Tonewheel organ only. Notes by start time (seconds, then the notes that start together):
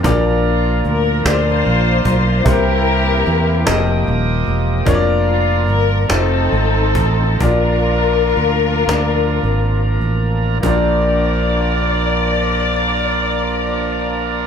0.03 F3 A#3 C4 A#4
0.11 D4
2.46 E3 A#3 C4 F#4
2.53 G4
3.66 F3 A#3 G4 D#5
4.86 F3 A#3 D4 A#4
6.08 F3 C4 D#4 A4
7.38 F3 A#3 D4 A#4
10.62 F3 A#3 D4 A#4